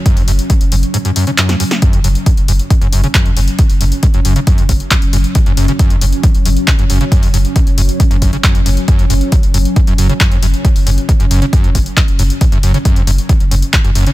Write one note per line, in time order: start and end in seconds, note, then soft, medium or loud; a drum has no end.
0.00 1.81 F#3 medium
0.00 1.81 C#4 medium
0.06 0.18 F#2 medium
0.06 kick loud
0.06 closed hi-hat medium
0.17 0.27 F#1 medium
0.17 0.23 F2 loud
0.17 open hi-hat medium
0.28 0.39 F#1 loud
0.28 0.31 F#2 medium
0.28 open hi-hat loud
0.39 closed hi-hat medium
0.50 0.53 F#2 medium
0.50 kick loud
0.50 closed hi-hat loud
0.61 0.71 F#1 medium
0.61 closed hi-hat medium
0.72 0.83 F#1 loud
0.72 0.76 F#2 medium
0.72 open hi-hat loud
0.83 closed hi-hat medium
0.94 0.98 G#2 medium
0.94 closed hi-hat medium
1.05 1.11 F#2 medium
1.05 closed hi-hat medium
1.16 1.25 F#2 medium
1.16 open hi-hat loud
1.27 1.31 C#3 medium
1.27 closed hi-hat medium
1.38 1.51 F#2 medium
1.38 clap loud
1.38 closed hi-hat medium
1.49 1.55 F2 loud
1.49 snare medium
1.49 closed hi-hat medium
1.60 1.64 F#2 medium
1.60 open hi-hat loud
1.71 snare loud
1.71 closed hi-hat medium
1.82 1.95 F#2 medium
1.82 14.13 F#3 medium
1.82 14.13 C#4 medium
1.82 kick loud
1.82 closed hi-hat loud
1.93 2.04 F#1 medium
1.93 1.99 F2 loud
1.93 closed hi-hat medium
2.04 2.15 F#1 medium
2.04 2.08 F#2 medium
2.04 open hi-hat loud
2.15 closed hi-hat medium
2.26 2.30 F#2 medium
2.26 kick loud
2.26 closed hi-hat loud
2.37 2.48 F#1 medium
2.37 closed hi-hat medium
2.48 2.59 F#1 loud
2.48 2.52 F#2 medium
2.48 open hi-hat loud
2.59 closed hi-hat medium
2.70 2.74 G#2 medium
2.70 kick loud
2.70 closed hi-hat medium
2.81 2.92 F#1 medium
2.81 2.88 F#2 medium
2.81 closed hi-hat medium
2.92 3.03 F#1 loud
2.92 3.02 F#2 medium
2.92 open hi-hat loud
3.04 3.07 C#3 medium
3.04 closed hi-hat medium
3.15 3.27 F#2 medium
3.15 kick loud
3.15 clap loud
3.15 closed hi-hat loud
3.26 3.36 F#1 medium
3.26 3.32 F2 loud
3.26 closed hi-hat medium
3.37 3.47 F#1 loud
3.37 3.40 F#2 medium
3.37 open hi-hat loud
3.48 closed hi-hat medium
3.59 3.62 F#2 medium
3.59 kick loud
3.59 closed hi-hat medium
3.70 3.80 F#1 medium
3.70 open hi-hat medium
3.81 3.92 F#1 loud
3.81 3.84 F#2 medium
3.81 open hi-hat loud
3.92 closed hi-hat medium
4.03 4.07 G#2 medium
4.03 kick loud
4.03 closed hi-hat loud
4.14 4.24 F#1 medium
4.14 4.20 F#2 medium
4.14 closed hi-hat medium
4.25 4.36 F#1 loud
4.25 4.34 F#2 medium
4.25 open hi-hat loud
4.36 4.40 C#3 medium
4.36 closed hi-hat medium
4.47 4.60 F#2 medium
4.47 kick loud
4.47 closed hi-hat medium
4.58 4.68 F#1 medium
4.58 4.64 F2 loud
4.58 closed hi-hat medium
4.69 4.80 F#1 loud
4.69 4.73 F#2 medium
4.69 kick medium
4.69 open hi-hat loud
4.80 closed hi-hat medium
4.91 4.95 F#2 medium
4.91 kick loud
4.91 clap loud
4.91 closed hi-hat loud
5.02 5.13 F#1 medium
5.02 closed hi-hat medium
5.13 5.24 F#1 loud
5.13 5.17 F#2 medium
5.13 open hi-hat loud
5.24 closed hi-hat medium
5.35 5.39 G#2 medium
5.35 kick loud
5.35 closed hi-hat loud
5.46 5.57 F#1 medium
5.46 5.52 F#2 medium
5.46 closed hi-hat medium
5.57 5.68 F#1 medium
5.57 5.66 F#2 medium
5.57 open hi-hat loud
5.68 5.72 C#3 medium
5.68 closed hi-hat medium
5.79 5.92 F#2 medium
5.79 kick loud
5.79 closed hi-hat loud
5.90 6.01 F#1 medium
5.90 5.96 F2 loud
5.90 closed hi-hat medium
6.01 6.12 F#1 loud
6.01 6.05 F#2 medium
6.01 open hi-hat loud
6.12 closed hi-hat medium
6.23 6.27 F#2 medium
6.23 kick loud
6.23 closed hi-hat medium
6.34 6.45 F#1 medium
6.34 closed hi-hat medium
6.45 6.56 F#1 loud
6.45 6.49 F#2 medium
6.45 open hi-hat loud
6.57 closed hi-hat medium
6.67 6.71 G#2 medium
6.67 kick loud
6.67 clap loud
6.67 closed hi-hat medium
6.79 6.89 F#1 medium
6.79 6.85 F#2 medium
6.79 closed hi-hat medium
6.90 7.00 F#1 loud
6.90 6.99 F#2 medium
6.90 open hi-hat loud
7.01 7.04 C#3 medium
7.01 closed hi-hat medium
7.12 7.24 F#2 medium
7.12 kick loud
7.12 closed hi-hat medium
7.23 7.33 F#1 medium
7.23 7.29 F2 loud
7.23 open hi-hat medium
7.34 7.45 F#1 loud
7.34 7.37 F#2 medium
7.34 open hi-hat loud
7.45 closed hi-hat medium
7.56 7.59 F#2 medium
7.56 kick loud
7.56 closed hi-hat medium
7.67 7.77 F#1 medium
7.67 closed hi-hat soft
7.78 7.89 F#1 loud
7.78 7.81 F#2 medium
7.78 open hi-hat loud
7.89 closed hi-hat medium
8.00 8.03 G#2 medium
8.00 kick loud
8.00 closed hi-hat medium
8.11 8.21 F#1 medium
8.11 8.17 F#2 medium
8.11 closed hi-hat medium
8.22 8.33 F#1 loud
8.22 8.31 F#2 medium
8.22 kick medium
8.22 open hi-hat loud
8.33 8.37 C#3 medium
8.33 closed hi-hat medium
8.44 8.56 F#2 medium
8.44 kick loud
8.44 clap loud
8.44 closed hi-hat medium
8.55 8.65 F#1 medium
8.55 8.61 F2 loud
8.55 closed hi-hat medium
8.66 8.77 F#1 loud
8.66 8.70 F#2 medium
8.66 open hi-hat loud
8.77 closed hi-hat medium
8.88 9.01 F#2 medium
8.88 kick loud
8.88 closed hi-hat medium
8.99 9.10 F#1 medium
8.99 9.05 F2 loud
8.99 closed hi-hat soft
9.10 9.21 F#1 loud
9.10 9.14 F#2 medium
9.10 open hi-hat loud
9.21 closed hi-hat soft
9.32 9.36 F#2 medium
9.32 kick loud
9.32 closed hi-hat medium
9.43 9.54 F#1 medium
9.43 closed hi-hat soft
9.54 9.65 F#1 loud
9.54 9.58 F#2 medium
9.54 open hi-hat loud
9.65 closed hi-hat medium
9.76 9.80 G#2 medium
9.76 kick loud
9.76 closed hi-hat medium
9.87 9.98 F#1 medium
9.87 9.93 F#2 medium
9.87 closed hi-hat soft
9.98 10.09 F#1 loud
9.98 10.08 F#2 medium
9.98 open hi-hat loud
10.09 10.13 C#3 medium
10.09 closed hi-hat medium
10.20 10.33 F#2 medium
10.20 kick loud
10.20 clap loud
10.20 closed hi-hat medium
10.31 10.42 F#1 medium
10.31 10.38 F2 loud
10.31 closed hi-hat soft
10.42 10.53 F#1 loud
10.42 10.46 F#2 medium
10.42 open hi-hat loud
10.54 closed hi-hat soft
10.65 10.68 F#2 medium
10.65 kick loud
10.65 closed hi-hat medium
10.76 10.86 F#1 medium
10.76 open hi-hat medium
10.87 10.97 F#1 loud
10.87 10.90 F#2 medium
10.87 open hi-hat loud
10.98 closed hi-hat soft
11.09 11.12 G#2 medium
11.09 kick loud
11.09 closed hi-hat medium
11.20 11.30 F#1 medium
11.20 11.26 F#2 medium
11.20 closed hi-hat medium
11.31 11.42 F#1 loud
11.31 11.40 F#2 medium
11.31 open hi-hat loud
11.42 11.45 C#3 medium
11.42 closed hi-hat medium
11.53 11.65 F#2 medium
11.53 kick loud
11.53 closed hi-hat medium
11.64 11.74 F#1 medium
11.64 11.70 F2 loud
11.64 closed hi-hat medium
11.75 11.86 F#1 loud
11.75 11.79 F#2 medium
11.75 kick medium
11.75 open hi-hat loud
11.86 closed hi-hat medium
11.97 12.01 F#2 medium
11.97 kick loud
11.97 clap loud
11.97 closed hi-hat medium
12.08 12.18 F#1 medium
12.08 closed hi-hat medium
12.19 12.30 F#1 loud
12.19 12.23 F#2 medium
12.19 open hi-hat loud
12.30 closed hi-hat medium
12.41 12.45 G#2 medium
12.41 kick loud
12.41 closed hi-hat medium
12.52 12.63 F#1 medium
12.52 12.58 F#2 medium
12.52 closed hi-hat soft
12.63 12.74 F#1 loud
12.63 12.72 F#2 medium
12.63 open hi-hat loud
12.74 12.78 C#3 medium
12.74 closed hi-hat soft
12.85 12.98 F#2 medium
12.85 kick loud
12.85 closed hi-hat medium
12.96 13.07 F#1 medium
12.96 13.02 F2 loud
12.96 closed hi-hat soft
13.07 13.18 F#1 loud
13.07 13.11 F#2 medium
13.07 open hi-hat loud
13.18 closed hi-hat medium
13.29 13.33 F#2 medium
13.29 kick loud
13.29 closed hi-hat medium
13.40 13.51 F#1 medium
13.40 closed hi-hat medium
13.51 13.62 F#1 loud
13.51 13.55 F#2 medium
13.51 open hi-hat loud
13.62 closed hi-hat medium
13.73 13.77 G#2 medium
13.73 kick loud
13.73 clap loud
13.73 closed hi-hat medium
13.84 13.95 F#1 medium
13.84 13.90 F#2 medium
13.84 closed hi-hat medium
13.95 14.06 F#1 loud
13.95 14.05 F#2 medium
13.95 open hi-hat loud
14.07 14.10 C#3 medium
14.07 closed hi-hat medium